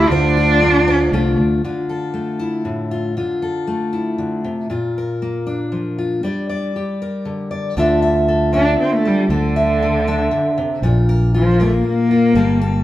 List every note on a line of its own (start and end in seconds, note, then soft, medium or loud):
0.00 0.62 A3 medium
0.00 0.37 F4 medium
0.00 0.11 A4 medium
0.07 1.08 D2 medium
0.07 1.37 D4 loud
0.07 1.36 F4 medium
0.11 1.63 D3 medium
0.11 0.86 C5 medium
0.37 1.12 F4 medium
0.62 1.12 A3 medium
0.88 1.61 C5 medium
1.12 1.35 C2 medium
1.12 1.61 A3 medium
1.12 1.61 F4 medium
1.37 1.61 D2 medium
1.64 3.16 D3 medium
1.64 2.91 F4 soft
1.89 3.41 A4 soft
2.14 3.13 A3 medium
2.39 3.13 E4 soft
2.65 3.16 A2 soft
2.91 3.17 F4 soft
3.17 4.17 D3 medium
3.17 4.67 F4 soft
3.42 4.70 A4 soft
3.67 4.67 A3 medium
3.93 4.67 E4 soft
4.18 4.44 D3 medium
4.44 4.69 C3 medium
4.70 6.20 A#2 medium
4.70 5.97 F4 soft
4.98 6.21 A#4 soft
5.22 6.21 A#3 soft
5.47 6.75 D4 soft
5.72 6.20 F3 soft
5.98 6.21 F4 soft
6.23 7.77 G3 medium
6.23 6.48 D5 medium
6.49 7.50 D5 soft
6.76 7.74 G4 medium
7.02 7.75 A#4 soft
7.25 7.73 D3 soft
7.51 7.73 D5 soft
7.77 8.75 D2 medium
7.77 9.29 D3 medium
7.77 8.52 D4 medium
7.77 9.59 F4 medium
7.77 8.28 A4 medium
7.77 8.02 E5 medium
8.02 8.53 E5 medium
8.28 9.04 A4 medium
8.53 9.59 D4 medium
8.53 8.78 D4 medium
8.53 9.27 E5 medium
8.80 8.95 C4 medium
8.93 9.09 A3 medium
9.05 9.30 G3 medium
9.05 9.27 A4 medium
9.29 10.28 D2 medium
9.29 10.30 D3 medium
9.29 10.80 D3 medium
9.29 9.81 A4 medium
9.56 10.07 E5 medium
9.82 10.81 A4 medium
10.08 11.59 D4 medium
10.08 10.81 E5 medium
10.31 10.57 D3 medium
10.58 10.83 C3 medium
10.82 11.81 A#1 medium
10.82 12.33 A#2 medium
10.82 11.33 F4 medium
11.09 11.60 A#4 medium
11.34 11.63 F3 medium
11.34 12.10 F4 medium
11.60 11.76 A3 medium
11.60 12.33 A#3 medium
11.60 12.33 A#4 medium
11.75 11.86 A#3 medium
11.87 12.84 A#3 medium
12.11 12.33 F4 medium
12.35 12.84 G1 medium
12.35 12.84 G3 medium
12.35 12.61 A4 medium
12.62 12.84 A4 medium